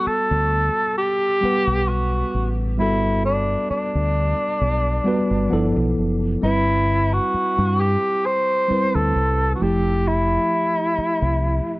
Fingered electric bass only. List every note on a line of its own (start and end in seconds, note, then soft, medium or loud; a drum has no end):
0.07 muted fingered electric bass stroke soft
0.31 0.68 D2 medium
1.43 muted fingered electric bass stroke soft
1.67 2.23 B1 medium
2.34 2.79 A1 medium
2.79 3.55 G1 loud
3.70 muted fingered electric bass stroke soft
3.95 4.32 D2 medium
4.61 4.99 B1 medium
5.31 5.48 G1 medium
5.52 5.72 G1 medium
5.77 5.94 B1 medium
5.98 6.35 F#1 medium
6.43 7.18 G1 loud
7.34 muted fingered electric bass stroke soft
7.58 7.96 G2 medium
8.70 muted fingered electric bass stroke soft
8.95 9.12 D2 medium
9.16 9.53 C2 medium
9.62 10.37 F1 medium
10.98 muted fingered electric bass stroke soft
11.22 11.59 C2 medium